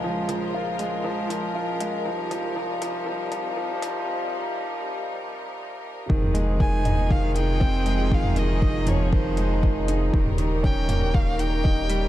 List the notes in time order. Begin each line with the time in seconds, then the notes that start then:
Already playing: A#1 C#3 F3 G#3 F4 A#4
0.04 F3
0.29 F3, closed hi-hat
0.54 F4
0.79 G#3, closed hi-hat
1.04 F3
1.30 F3, closed hi-hat
1.55 F4
1.80 G#3, closed hi-hat
2.05 C2 C3 F3 G3 D#4
2.31 F3, closed hi-hat
2.56 F3
2.82 F3, closed hi-hat
3.06 F3
3.31 F3, closed hi-hat
3.57 F3
3.82 F3, closed hi-hat
6.09 F1 C3 D#3 F3 D#4 G#4, kick
6.22 mid tom
6.34 G#3, closed hi-hat
6.59 D#3 G#5, kick
6.85 D#4, closed hi-hat, mid tom
7.10 D#3 F5, kick
7.35 D#3 G5, closed hi-hat
7.60 C4, kick
7.86 G#3, closed hi-hat
8.11 D#3 F5, kick
8.24 mid tom
8.36 D#3 D#5, closed hi-hat
8.62 D#4, kick
8.87 F3 C#5, closed hi-hat, mid tom
9.12 D#3 C5, kick
9.37 G#3, closed hi-hat
9.63 D#3, kick
9.88 D#4, closed hi-hat
10.13 D#1 C#3 D#3 G3 A#4, kick
10.26 mid tom
10.38 D#3, closed hi-hat
10.63 C#4 G5, kick
10.89 A#3, closed hi-hat, mid tom
11.14 D#3 F5, kick
11.39 D#3 G5, closed hi-hat
11.64 D#4, kick
11.89 G3, closed hi-hat